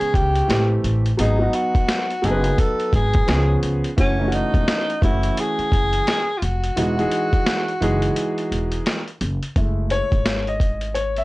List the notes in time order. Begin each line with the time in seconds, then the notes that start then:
Already playing: C#3 G#3 B3 C#4 G#4
0.01 muted upright bass stroke, closed hi-hat
0.14 C#2 G4, kick, closed hi-hat
0.36 closed hi-hat
0.47 A1 E3 A3 C4 G4, snare, closed hi-hat
0.84 A1, closed hi-hat
1.06 closed hi-hat
1.17 G#1 F#3 B3 D#4 G#4, closed hi-hat
1.39 F#3 B3 D#4 F#4
1.53 F#4, closed hi-hat
1.75 kick, closed hi-hat
1.89 snare, closed hi-hat
2.10 closed hi-hat
2.22 F#1 F#3 B3 D#4 G#4 A4, closed hi-hat
2.31 B4
2.44 closed hi-hat
2.58 A4, kick, closed hi-hat
2.80 closed hi-hat
2.93 G#1 G#4, kick, closed hi-hat
3.13 kick, closed hi-hat
3.27 C#2 F3 B3 C#4 G#4, snare, closed hi-hat
3.63 C#2, closed hi-hat
3.84 closed hi-hat
3.97 F#1 E3 A3 C#4 F#4, kick, closed hi-hat
4.18 E3 A3 C#4 D#4
4.28 F#4
4.32 D#4, closed hi-hat
4.54 E1, kick, closed hi-hat
4.68 snare, closed hi-hat
4.90 closed hi-hat
5.01 F#1 E3 A3 C#4 E4 F#4, kick, closed hi-hat
5.23 closed hi-hat
5.37 G#4, closed hi-hat
5.59 muted upright bass stroke, closed hi-hat
5.72 F#1, kick, closed hi-hat
5.93 closed hi-hat
6.07 snare, closed hi-hat
6.38 F4
6.42 F1 F#4, closed hi-hat
6.64 closed hi-hat
6.76 E1 E3 G#3 D#4 F#4, closed hi-hat
6.97 E3 G#3 D#4 G#4, closed hi-hat
7.11 closed hi-hat
7.33 kick, closed hi-hat
7.46 snare, closed hi-hat
7.68 closed hi-hat
7.80 F#1 E3 G#3 D#4 G#4, closed hi-hat
8.02 closed hi-hat
8.16 closed hi-hat
8.38 closed hi-hat
8.51 E1, closed hi-hat
8.72 closed hi-hat
8.86 snare, closed hi-hat
9.08 closed hi-hat
9.21 F#1, closed hi-hat
9.43 closed hi-hat
9.56 F#1 G#3 A3 E4, kick, closed hi-hat
9.90 C#5, closed hi-hat
10.12 G#1, kick, closed hi-hat
10.26 snare, closed hi-hat
10.47 D#5, closed hi-hat
10.60 kick, closed hi-hat
10.81 closed hi-hat
10.95 C#5, closed hi-hat
11.16 E5, closed hi-hat